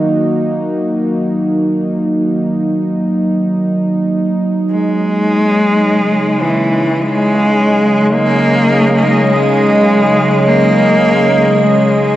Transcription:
0.00 4.72 D#3 medium
0.00 12.16 F#3 medium
0.00 6.81 A#3 medium
0.00 12.16 D#4 medium
0.00 4.73 F#4 medium
4.70 6.43 G#3 loud
4.70 12.16 C#5 medium
5.79 12.16 C#3 medium
6.37 12.16 G#3 medium
6.42 7.03 E3 medium
7.02 8.14 G#3 loud
7.38 12.16 D#5 medium
8.13 9.29 A#3 loud
9.30 10.49 G#3 loud
10.47 11.65 A#3 loud
11.63 12.16 G#3 medium

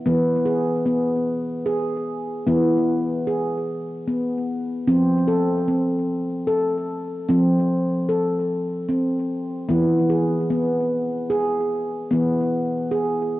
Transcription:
0.06 2.43 E3 medium
0.06 0.46 B3 medium
0.45 0.86 G#4 medium
0.86 1.66 B3 medium
1.66 2.46 G#4 medium
2.47 4.84 E3 medium
2.47 3.27 B3 medium
3.27 4.07 G#4 medium
4.08 4.88 B3 medium
4.87 7.24 F3 medium
4.87 5.28 C4 medium
5.28 5.68 A4 medium
5.68 6.48 C4 medium
6.47 7.28 A4 medium
7.29 9.66 F3 medium
7.29 8.09 C4 medium
8.09 8.89 A4 medium
8.89 9.69 C4 medium
9.69 12.07 E3 medium
9.69 10.09 B3 medium
10.10 10.50 G#4 medium
10.50 11.31 B3 medium
11.30 12.11 G#4 medium
12.11 13.40 E3 medium
12.11 12.91 B3 medium
12.91 13.40 G#4 medium

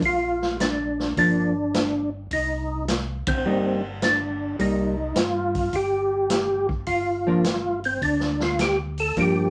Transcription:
0.02 1.12 A#1 medium
0.02 0.57 F4 medium
0.02 kick soft
0.02 open hi-hat soft
0.42 snare soft
0.60 1.13 D4 medium
0.60 snare medium
0.60 closed hi-hat soft
1.00 snare soft
1.17 2.27 G1 medium
1.17 1.52 F3 soft
1.17 1.52 A#3 soft
1.17 1.52 D4 medium
1.17 2.10 D4 medium
1.17 kick soft
1.17 open hi-hat soft
1.74 snare medium
1.74 closed hi-hat soft
2.31 3.23 C2 medium
2.31 2.85 D#4 medium
2.31 kick soft
2.31 open hi-hat soft
2.88 snare medium
2.88 closed hi-hat soft
3.27 3.44 A#1 medium
3.27 3.81 C4 medium
3.27 kick medium
3.27 ride medium
3.44 4.55 G1 medium
3.44 3.81 G3 medium
3.44 3.81 A#3 medium
3.44 3.81 D#4 medium
4.02 4.56 D4 medium
4.02 snare medium
4.02 closed hi-hat medium
4.59 5.13 C2 medium
4.59 4.94 G3 soft
4.59 4.95 A#3 soft
4.59 4.95 D#4 soft
4.59 5.19 D#4 medium
4.59 kick soft
4.59 open hi-hat soft
5.15 5.69 G2 medium
5.15 5.76 F4 medium
5.15 snare medium
5.15 closed hi-hat soft
5.55 kick soft
5.55 open hi-hat soft
5.73 6.84 G1 medium
5.73 6.67 G4 medium
5.73 kick soft
5.73 open hi-hat soft
6.30 snare medium
6.30 closed hi-hat medium
6.69 kick medium
6.87 7.98 G1 medium
6.87 7.80 F4 medium
6.87 kick soft
6.87 open hi-hat soft
7.27 7.43 F3 medium
7.27 7.44 A#3 medium
7.27 7.44 D4 medium
7.44 snare medium
7.44 closed hi-hat medium
7.84 8.02 C4 medium
7.84 open hi-hat soft
8.02 9.12 D2 medium
8.02 8.43 D4 medium
8.02 kick soft
8.02 open hi-hat soft
8.20 snare soft
8.40 8.61 F4 medium
8.40 snare soft
8.59 8.78 G4 medium
8.59 snare medium
8.59 closed hi-hat soft
8.98 9.18 A4 medium
8.98 open hi-hat soft
9.16 9.50 G2 medium
9.16 9.50 F3 soft
9.16 9.50 A#3 soft
9.16 9.50 D4 medium
9.16 9.50 G4 medium
9.16 kick soft
9.16 open hi-hat soft

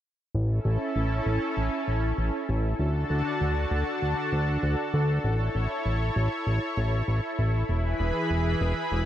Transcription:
0.35 0.60 A1 medium
0.35 2.77 C#4 medium
0.35 2.77 E4 medium
0.35 2.77 A4 medium
0.65 0.78 A1 medium
0.96 1.21 A1 medium
1.26 1.39 A1 loud
1.57 1.70 A1 medium
1.88 2.13 A1 medium
2.18 2.31 A1 medium
2.49 2.74 A1 medium
2.80 3.05 D2 medium
2.80 5.22 D3 medium
2.80 5.22 D4 medium
2.80 5.22 F#4 medium
2.80 7.66 A4 medium
2.80 5.22 A5 medium
3.10 3.23 D2 medium
3.41 3.66 D2 medium
3.71 3.84 D2 loud
4.02 4.15 D2 medium
4.33 4.58 D2 medium
4.63 4.76 D2 medium
4.94 5.19 D2 loud
5.24 5.50 A1 loud
5.24 9.05 E4 medium
5.24 7.67 C#5 medium
5.55 5.68 A1 medium
5.86 6.11 A1 medium
6.16 6.29 A1 loud
6.47 6.59 A1 medium
6.77 7.03 A1 medium
7.08 7.21 A1 medium
7.39 7.64 A1 loud
7.69 7.95 E1 medium
7.69 9.05 E3 medium
7.69 9.05 G#4 medium
7.69 9.05 B4 medium
7.69 9.05 B5 medium
8.00 8.13 E1 loud
8.30 8.56 E1 medium
8.61 8.74 E1 loud
8.92 9.05 E1 medium

